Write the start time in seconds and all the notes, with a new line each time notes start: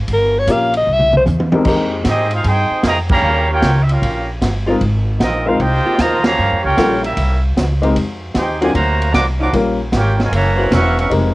0.08 G1, kick, ride
0.13 A#4
0.39 C#5
0.47 A#1 A#3 C#4 F4 G4 A#4, kick, hi-hat pedal, ride
0.52 F5
0.74 D#5, ride
0.87 C2
0.93 E5
0.99 mid tom
1.13 C5, mid tom
1.26 E2, hi-hat pedal, high tom
1.40 high tom
1.52 F2 G#3 C4 D#4 G4 A#4, high tom
1.65 F2 D#3 G#3 A#3 C4 D#4 G4 A#4, kick, crash
2.04 G#2 G#3 C4 D#4 G4, kick, snare, hi-hat pedal, ride
2.08 G#4 D#5
2.30 G#3 C4 D#4 F4, ride
2.35 G#4 C5 F5
2.44 G2 C4 D#4 G#4 C5 G5, kick, ride
2.70 muted upright bass stroke
2.83 F2 C3 D#3 A#3 G#4 G5 A#5, kick, snare, hi-hat pedal, ride
2.87 D#5
3.09 C#3 G3 A#3 G4 C#5 F5 A#5, kick, crash
3.22 D#2
3.50 A#3 C#4 F4 G4 A#4 C#5 G5
3.62 C#2, kick, snare, hi-hat pedal, ride
3.83 E5
3.89 A#3 C#4 F4 G4 A#4 F5, ride
4.02 A#1, kick, ride
4.41 G1, kick, snare, hi-hat pedal, ride
4.66 C3 G#3 A#3 C4 F4
4.70 D#4 F4 A#4
4.81 G#1, kick, ride
5.19 A#1 F3 C4 D#4 A#4 D#5, kick, snare, hi-hat pedal, ride
5.23 C4 F4
5.44 F3 G#3 C4 D#4 F4 A#4 C5 F5
5.57 C2 C4 D#4 F4 G4 C5 D#5 G5, kick, ride
5.84 C3 G#3 A#3 F4, muted upright bass stroke
5.96 D#2 D#3 F3 A#3 F4 C5 D#5 A#5, kick, snare, hi-hat pedal, ride
6.21 C#3 F3 A#3 G4 C#5, snare, ride
6.25 F5 A#5
6.38 G2
6.51 F2
6.61 C#2 A#3 C#4 G4 C#5 G5
6.65 F4 A#4
6.77 A#1 C#3 G3 A#3 C#4 F4 A4, kick, snare, hi-hat pedal, ride
7.01 G3 A#3 E4 A#4, ride
7.05 C#4 G4 E5
7.17 C2, kick, ride
7.56 C#2, kick, snare, hi-hat pedal, ride
7.82 D#3 G#3 A#3 C4 D#4 G4 A#4, ride
7.96 F2, kick, ride
8.34 D#2 C4 D#4 G4 G#4 C5 G5, kick, snare, hi-hat pedal, ride
8.60 C3 D3 D#3 F#3 G#3 A#3 C4 D4 D#4 F4 F#4 G4 A#4 C5 G#5, ride
8.73 D2 C3 F#3 A#3 F#4 C5 F5 A#5, kick, ride
9.02 ride
9.12 C2 F#3 A#3 D4 C5 F#5 A#5 D6, kick, snare, hi-hat pedal, ride
9.39 F3 F#3 A#3 C#4 D4 D#4 C5 F#5 A#5 D6
9.53 A#1 G3 A#3 C#4 F4 A#4, kick, ride
9.92 G#1 A#3 C#4 G4, kick, snare, hi-hat pedal, ride
9.97 F4 A#4 C#5 G5
10.19 G#3 F4 A#4 C#5 G#5, snare, ride
10.31 F#1 C#3 E3 A#3, kick, ride
10.35 F#4 C#5 E5 A#5
10.56 E3 A#3 C4 F#4
10.70 E1 E3 A#3 C#4 F#5 C#6, kick, snare, hi-hat pedal, ride
10.74 A#4 E5
10.97 E3 A#3 C#4 A#4 E5 F#5 C#6, ride
11.10 F1 G#3 C4 D#4 G4 A#4, kick, ride